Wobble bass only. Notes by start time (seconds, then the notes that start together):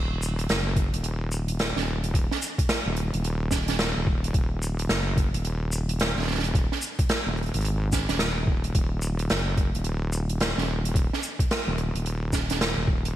Already playing: D#1
0.49 F#1
0.93 D#1
1.76 D#1
2.86 D#1
3.14 D#1
3.96 D#1
4.34 D#1
4.89 F#1
5.34 D#1
6.16 D#1
7.26 D#1
7.54 G#1
8.09 D#1
8.47 D#1
8.75 D#1
9.30 F#1
9.75 D#1
10.57 D#1
11.67 D#1
11.95 D#1
12.77 D#1